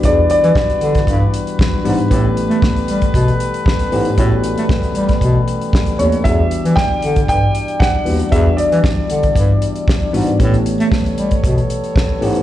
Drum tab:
HH |x-xx-xxxx-xx--ox|x-xx-xxxxxxx-xox|x-xx-xxxx-xx-xxx|x-xx--xxx-xx--ox|
SD |----o--o----o---|----o-------o---|----o--o----o---|----o-------o---|
BD |o---o--oo---o---|o---o--oo---o---|o---o--oo---o---|o---o--oo---o---|

HH |x-xx--xxx-xx--ox|xxxx-xxxxxxx--ox|
SD |----o-------o---|----o-------o---|
BD |o---o--oo---o---|o---o--oo---o---|